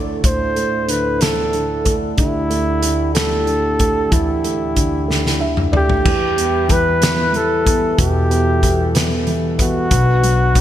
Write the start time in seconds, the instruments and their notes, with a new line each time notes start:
Already playing: upright bass D2, upright piano D3 A3, french horn section D3 D4 E4 A4
0.24 upright bass D2, upright piano A2, flugelhorn C5, kick, closed hi-hat
0.55 upright piano A3, closed hi-hat
0.88 upright piano D3, flugelhorn B4, closed hi-hat
1.20 upright piano A3, flugelhorn A4, snare, closed hi-hat
1.53 upright piano D3, closed hi-hat
1.85 upright piano A3, kick, closed hi-hat
2.17 upright bass D2, upright piano D3, flugelhorn E4, french horn section G4, kick, closed hi-hat
2.50 upright piano A3, closed hi-hat
2.82 upright piano D3, closed hi-hat
3.14 upright piano A3, flugelhorn A4, snare, closed hi-hat
3.47 upright piano D3, closed hi-hat
3.79 upright piano A3, kick, closed hi-hat
4.11 upright bass D2, upright piano E3, flugelhorn E4, kick, closed hi-hat
4.44 upright piano A3, closed hi-hat
4.76 upright piano D3, kick, closed hi-hat
5.08 upright piano A3, snare
5.26 snare
5.40 upright piano D3 E5
5.57 mid tom
5.72 upright piano A3 D5, mid tom
5.76 flugelhorn G4
5.90 floor tom
6.04 upright bass E2, french horn section E3 G3 E4 B4, upright piano E3, kick, crash
6.37 upright piano B3, closed hi-hat
6.69 upright piano E3, flugelhorn B4, kick, closed hi-hat
7.01 upright piano B3, snare, closed hi-hat
7.33 upright piano E3, flugelhorn A4, closed hi-hat
7.65 upright piano B3, kick, closed hi-hat
7.96 upright bass E2, upright piano B2, french horn section A4, kick, closed hi-hat
8.01 flugelhorn G4
8.30 upright piano B3, closed hi-hat
8.62 upright piano E3, kick, closed hi-hat
8.95 upright piano B3, snare, closed hi-hat
9.27 upright piano E3, closed hi-hat
9.59 upright piano B3, flugelhorn F#4, kick, closed hi-hat
9.90 upright bass B1, upright piano B2, french horn section D4 F#4 B4, kick, closed hi-hat
10.23 upright piano F#3, closed hi-hat
10.55 upright piano D4, kick, closed hi-hat